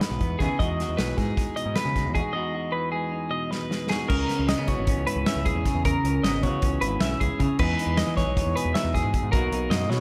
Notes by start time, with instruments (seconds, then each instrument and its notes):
Already playing: clean electric guitar G#2 E3 B3 D#4 F#4
0.01 clean electric guitar B4, snare, closed hi-hat
0.10 picked electric bass B1
0.20 picked electric bass E2, clean electric guitar B3, kick, closed hi-hat
0.39 picked electric bass D#2, clean electric guitar C#3 B3 D#4 G#4, kick, snare, closed hi-hat
0.43 clean electric guitar E4
0.59 clean electric guitar E2 G#3 D#4 F#4 D#5, picked electric bass E2, kick, closed hi-hat
0.80 clean electric guitar F#4, snare, closed hi-hat
0.89 picked electric bass E2
0.97 picked electric bass B1, clean electric guitar E3 B4, snare, closed hi-hat
1.17 picked electric bass G#2, clean electric guitar G#3 G#4, kick, snare, closed hi-hat
1.37 clean electric guitar D#4, kick, snare, closed hi-hat
1.56 clean electric guitar B2 D#5, closed hi-hat
1.66 picked electric bass G#2
1.75 clean electric guitar B4, snare, closed hi-hat
1.85 picked electric bass C#3
1.96 clean electric guitar G#3, kick, snare, closed hi-hat
2.05 picked electric bass E2
2.13 clean electric guitar E2 G#3 D#4 F#4 G#4, kick, closed hi-hat
2.33 clean electric guitar E2 G#3 D#4 F#4 D#5
2.55 clean electric guitar F#4
2.72 clean electric guitar E3 B4
2.92 clean electric guitar G#3 G#4
3.12 clean electric guitar D#4
3.30 clean electric guitar B2 D#5
3.51 clean electric guitar B4, snare
3.70 clean electric guitar G#3, snare
3.88 clean electric guitar E2 G#3 D#4 F#4 G#4, snare
4.08 picked electric bass C#2, clean electric guitar C#3 A#4, kick, crash
4.27 clean electric guitar B3, snare, closed hi-hat
4.37 picked electric bass C#2, clean electric guitar C#4
4.47 clean electric guitar G#3 D#5, snare, closed hi-hat
4.58 picked electric bass C#3, clean electric guitar B3
4.68 clean electric guitar E3 F#4 C#5, kick, closed hi-hat
4.79 picked electric bass G#1
4.87 clean electric guitar C#4, kick, closed hi-hat
4.97 picked electric bass C#2
5.07 clean electric guitar G#2 E4 B4, closed hi-hat
5.16 picked electric bass C#2
5.26 clean electric guitar C#4 E5, snare, closed hi-hat
5.35 picked electric bass C#2
5.46 clean electric guitar G#4, kick, closed hi-hat
5.55 picked electric bass E2
5.66 clean electric guitar C#3, kick, snare, closed hi-hat
5.75 picked electric bass E2
5.85 clean electric guitar C#3 A#4, kick, closed hi-hat
6.04 picked electric bass C#2, clean electric guitar C#4, closed hi-hat
6.23 picked electric bass G#1, clean electric guitar B3 D#5, snare, closed hi-hat
6.43 picked electric bass C#3, clean electric guitar E3 F#4 C#5, kick, closed hi-hat
6.62 picked electric bass C#2, clean electric guitar C#4, kick, closed hi-hat
6.81 picked electric bass G#1, clean electric guitar G#2 E4 B4, closed hi-hat
7.00 picked electric bass B1, clean electric guitar C#4 E5, snare, closed hi-hat
7.20 picked electric bass C#2, clean electric guitar G#4, kick, closed hi-hat
7.39 picked electric bass C#3, clean electric guitar C#3, kick, closed hi-hat
7.59 clean electric guitar E2 E3 G#3 D#4 B4, picked electric bass E2, kick, crash
7.63 clean electric guitar G#4
7.79 clean electric guitar D#4, closed hi-hat
7.86 picked electric bass E2
7.97 clean electric guitar G#3 D#5, snare, closed hi-hat
8.07 picked electric bass E3
8.17 clean electric guitar E3 G#4 C#5, kick, snare, closed hi-hat
8.26 picked electric bass B1
8.37 clean electric guitar D#4, kick, snare, closed hi-hat
8.46 picked electric bass E2
8.55 clean electric guitar B2 G#4 B4, closed hi-hat
8.65 picked electric bass E2
8.74 clean electric guitar D#4 E5, snare, closed hi-hat
8.84 picked electric bass E2
8.94 clean electric guitar G#4, kick, snare, closed hi-hat
9.04 picked electric bass G#2
9.14 clean electric guitar E2, kick, closed hi-hat
9.23 picked electric bass G#2
9.32 picked electric bass B1, clean electric guitar B2 F#3 A#3 D#4 F#4 A#4, kick, closed hi-hat
9.52 picked electric bass B1, clean electric guitar D#4, closed hi-hat
9.70 picked electric bass F#2, clean electric guitar A#3 D#5, snare, closed hi-hat
9.89 picked electric bass B2, clean electric guitar F#3 E4 C#5, snare